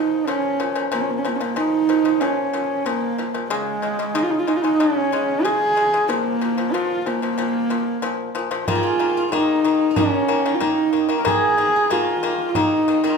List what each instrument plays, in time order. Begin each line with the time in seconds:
Already playing: pipa A#2 F3, horsehead fiddle D#4
0.27 pipa A#2 F3, horsehead fiddle C#4
0.60 pipa A#2 F3
0.75 pipa A#2 F3
0.92 pipa A#2 F3, horsehead fiddle A#3
1.01 horsehead fiddle C#4
1.10 horsehead fiddle A#3
1.18 horsehead fiddle C#4
1.25 pipa A#2 F3, horsehead fiddle A#3
1.36 horsehead fiddle C#4
1.40 pipa A#2 F3, horsehead fiddle A#3
1.56 pipa A#2 F3, horsehead fiddle D#4
1.89 pipa A#2 F3
2.05 pipa A#2 F3
2.20 pipa A#2 F3, horsehead fiddle C#4
2.53 pipa A#2 F3
2.85 pipa A#2 F3, horsehead fiddle A#3
3.18 pipa A#2 F3
3.34 pipa A#2 F3
3.49 pipa C#3 G#3, horsehead fiddle G#3
3.82 pipa C#3 G#3
3.99 pipa C#3 G#3
4.15 pipa C#3 G#3, horsehead fiddle D#4
4.23 horsehead fiddle F4
4.31 horsehead fiddle D#4
4.39 horsehead fiddle F4
4.47 pipa C#3 G#3, horsehead fiddle D#4
4.56 horsehead fiddle F4
4.62 pipa C#3 G#3, horsehead fiddle D#4
4.80 pipa C#3 G#3, horsehead fiddle C#4
5.12 pipa C#3 G#3
5.44 pipa C#3 G#3, horsehead fiddle G#4
5.77 pipa C#3 G#3
5.93 pipa C#3 G#3
6.09 pipa A#2 F3, horsehead fiddle A#3
6.41 pipa A#2 F3
6.57 pipa A#2 F3
6.72 pipa A#2 F3, horsehead fiddle F4
7.06 pipa A#2 F3, horsehead fiddle A#3
7.22 pipa A#2 F3
7.38 pipa A#2 F3
7.70 pipa A#2 F3
8.02 pipa A#2 F3
8.35 pipa A#2 F3
8.51 pipa A#2 F3
8.68 pipa D#3 A#3, horsehead fiddle F4, guzheng F4, frame drum
8.75 guzheng G#4
8.83 guzheng F4
8.99 pipa D#3 A#3, frame drum
9.17 guzheng F4
9.32 pipa D#3 A#3, guzheng D#4, horsehead fiddle D#4, frame drum
9.64 pipa D#3 A#3, frame drum
9.91 guzheng D#4
9.96 pipa D#3 A#3, horsehead fiddle C#4, guzheng C#4, frame drum
10.28 pipa D#3 A#3
10.46 pipa D#3 A#3
10.55 horsehead fiddle F4
10.60 pipa D#3 A#3, guzheng D#4, horsehead fiddle D#4, frame drum
10.93 pipa D#3 A#3, frame drum
11.09 pipa D#3 A#3
11.19 horsehead fiddle A#4
11.25 pipa D#3 A#3, horsehead fiddle G#4, guzheng G#4, frame drum
11.57 pipa D#3 A#3, frame drum
11.76 guzheng G#4
11.90 pipa D#3 A#3, guzheng F4, horsehead fiddle F4, frame drum
12.23 pipa D#3 A#3, frame drum
12.49 horsehead fiddle F4
12.55 pipa D#3 A#3, guzheng D#4, horsehead fiddle D#4, frame drum
12.88 pipa D#3 A#3
13.04 pipa D#3 A#3, guzheng F4